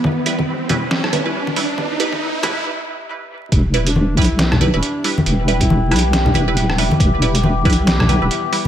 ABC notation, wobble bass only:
X:1
M:4/4
L:1/16
Q:"Swing 16ths" 1/4=138
K:Em
V:1 name="Wobble bass" clef=bass
E,,,6 B,,,4- B,,, E,,, z4 | E,,,6 B,,,2 z8 | E,,,6 B,,,4- B,,, E,,, z4 | E,,,6 B,,,4 E,,,2 D,,,2 E,,, z |
E,,,6 B,,,4- B,,, E,,, z4 |]